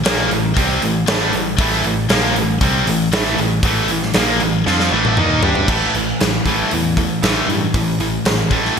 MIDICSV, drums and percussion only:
0, 0, Header, 1, 2, 480
1, 0, Start_track
1, 0, Key_signature, 0, "minor"
1, 0, Tempo, 512821
1, 1484, Time_signature, 4, 2, 24, 8
1, 8233, End_track
2, 0, Start_track
2, 0, Title_t, "Drums"
2, 48, Note_on_c, 9, 46, 77
2, 55, Note_on_c, 9, 38, 121
2, 141, Note_off_c, 9, 46, 0
2, 149, Note_off_c, 9, 38, 0
2, 292, Note_on_c, 9, 46, 56
2, 386, Note_off_c, 9, 46, 0
2, 530, Note_on_c, 9, 36, 93
2, 536, Note_on_c, 9, 46, 69
2, 624, Note_off_c, 9, 36, 0
2, 629, Note_off_c, 9, 46, 0
2, 769, Note_on_c, 9, 46, 58
2, 863, Note_off_c, 9, 46, 0
2, 1006, Note_on_c, 9, 46, 77
2, 1013, Note_on_c, 9, 38, 125
2, 1099, Note_off_c, 9, 46, 0
2, 1107, Note_off_c, 9, 38, 0
2, 1244, Note_on_c, 9, 46, 60
2, 1337, Note_off_c, 9, 46, 0
2, 1483, Note_on_c, 9, 36, 112
2, 1483, Note_on_c, 9, 46, 79
2, 1577, Note_off_c, 9, 36, 0
2, 1577, Note_off_c, 9, 46, 0
2, 1612, Note_on_c, 9, 38, 31
2, 1706, Note_off_c, 9, 38, 0
2, 1721, Note_on_c, 9, 46, 52
2, 1815, Note_off_c, 9, 46, 0
2, 1960, Note_on_c, 9, 46, 85
2, 1968, Note_on_c, 9, 38, 114
2, 2054, Note_off_c, 9, 46, 0
2, 2061, Note_off_c, 9, 38, 0
2, 2211, Note_on_c, 9, 46, 59
2, 2304, Note_off_c, 9, 46, 0
2, 2444, Note_on_c, 9, 36, 98
2, 2447, Note_on_c, 9, 46, 80
2, 2538, Note_off_c, 9, 36, 0
2, 2540, Note_off_c, 9, 46, 0
2, 2688, Note_on_c, 9, 46, 61
2, 2782, Note_off_c, 9, 46, 0
2, 2926, Note_on_c, 9, 46, 88
2, 2934, Note_on_c, 9, 38, 123
2, 3020, Note_off_c, 9, 46, 0
2, 3027, Note_off_c, 9, 38, 0
2, 3167, Note_on_c, 9, 46, 64
2, 3260, Note_off_c, 9, 46, 0
2, 3397, Note_on_c, 9, 36, 116
2, 3397, Note_on_c, 9, 46, 88
2, 3491, Note_off_c, 9, 36, 0
2, 3491, Note_off_c, 9, 46, 0
2, 3633, Note_on_c, 9, 46, 62
2, 3726, Note_off_c, 9, 46, 0
2, 3767, Note_on_c, 9, 38, 35
2, 3861, Note_off_c, 9, 38, 0
2, 3872, Note_on_c, 9, 46, 83
2, 3879, Note_on_c, 9, 38, 107
2, 3965, Note_off_c, 9, 46, 0
2, 3973, Note_off_c, 9, 38, 0
2, 4120, Note_on_c, 9, 46, 54
2, 4214, Note_off_c, 9, 46, 0
2, 4367, Note_on_c, 9, 38, 64
2, 4460, Note_off_c, 9, 38, 0
2, 4489, Note_on_c, 9, 38, 59
2, 4582, Note_off_c, 9, 38, 0
2, 4725, Note_on_c, 9, 47, 70
2, 4819, Note_off_c, 9, 47, 0
2, 4840, Note_on_c, 9, 45, 90
2, 4933, Note_off_c, 9, 45, 0
2, 5079, Note_on_c, 9, 43, 104
2, 5173, Note_off_c, 9, 43, 0
2, 5198, Note_on_c, 9, 43, 84
2, 5291, Note_off_c, 9, 43, 0
2, 5318, Note_on_c, 9, 36, 100
2, 5322, Note_on_c, 9, 49, 95
2, 5412, Note_off_c, 9, 36, 0
2, 5416, Note_off_c, 9, 49, 0
2, 5567, Note_on_c, 9, 46, 49
2, 5660, Note_off_c, 9, 46, 0
2, 5808, Note_on_c, 9, 46, 71
2, 5816, Note_on_c, 9, 38, 99
2, 5902, Note_off_c, 9, 46, 0
2, 5909, Note_off_c, 9, 38, 0
2, 6042, Note_on_c, 9, 36, 76
2, 6047, Note_on_c, 9, 46, 54
2, 6136, Note_off_c, 9, 36, 0
2, 6140, Note_off_c, 9, 46, 0
2, 6283, Note_on_c, 9, 46, 72
2, 6377, Note_off_c, 9, 46, 0
2, 6524, Note_on_c, 9, 36, 80
2, 6531, Note_on_c, 9, 46, 57
2, 6618, Note_off_c, 9, 36, 0
2, 6624, Note_off_c, 9, 46, 0
2, 6768, Note_on_c, 9, 46, 79
2, 6775, Note_on_c, 9, 38, 107
2, 6861, Note_off_c, 9, 46, 0
2, 6869, Note_off_c, 9, 38, 0
2, 7017, Note_on_c, 9, 46, 51
2, 7111, Note_off_c, 9, 46, 0
2, 7247, Note_on_c, 9, 36, 105
2, 7251, Note_on_c, 9, 46, 74
2, 7340, Note_off_c, 9, 36, 0
2, 7344, Note_off_c, 9, 46, 0
2, 7488, Note_on_c, 9, 46, 52
2, 7582, Note_off_c, 9, 46, 0
2, 7725, Note_on_c, 9, 46, 74
2, 7733, Note_on_c, 9, 38, 103
2, 7819, Note_off_c, 9, 46, 0
2, 7827, Note_off_c, 9, 38, 0
2, 7964, Note_on_c, 9, 36, 85
2, 7965, Note_on_c, 9, 46, 51
2, 8057, Note_off_c, 9, 36, 0
2, 8059, Note_off_c, 9, 46, 0
2, 8097, Note_on_c, 9, 38, 32
2, 8191, Note_off_c, 9, 38, 0
2, 8233, End_track
0, 0, End_of_file